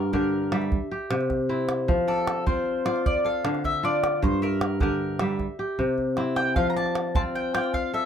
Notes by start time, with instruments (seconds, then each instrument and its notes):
Already playing: kora G2 D4 F4, mandolin A#4
0.13 kora D3 G4, mandolin A#4, calabash thump
0.52 kora G3 E5, calabash click
0.62 calabash click
0.72 calabash thump
0.91 kora G4
1.10 kora C3, calabash click
1.21 calabash click
1.30 calabash thump, calabash click
1.49 kora C4 E4
1.69 calabash click
1.88 kora F3, calabash thump, calabash click
2.08 mandolin A4, kora D5, calabash click
2.18 calabash click
2.27 calabash click
2.46 kora C4 F4, mandolin C5, calabash thump
2.85 kora F4 D5, calabash click
2.96 calabash click
3.06 mandolin D5, calabash thump
3.24 kora A4, mandolin F5
3.44 kora D3, calabash click
3.55 calabash click
3.64 mandolin E5, calabash thump, calabash click
3.83 kora D4 F4, mandolin D5
4.04 calabash click
4.22 kora G2, mandolin C5, calabash thump
4.42 mandolin A#4, kora E5, calabash click
4.61 calabash click
4.80 kora D3 G4, mandolin A#4, calabash thump, calabash click
5.19 kora G3 E5, calabash click
5.39 calabash thump, calabash click
5.59 kora G4
5.78 kora C3, calabash thump
5.98 calabash thump
6.17 kora C4 E4, calabash click
6.36 mandolin G5, calabash click
6.56 kora F3, mandolin F5, calabash thump, calabash click
6.70 mandolin A#5
6.76 kora D5, mandolin A5, calabash click
6.86 calabash click
6.95 calabash click
7.15 kora C4 F4, mandolin A5, calabash thump
7.35 mandolin G5
7.54 kora F4 D5, mandolin G5, calabash click
7.64 calabash click
7.74 mandolin F5, calabash thump
7.93 kora A4, mandolin E5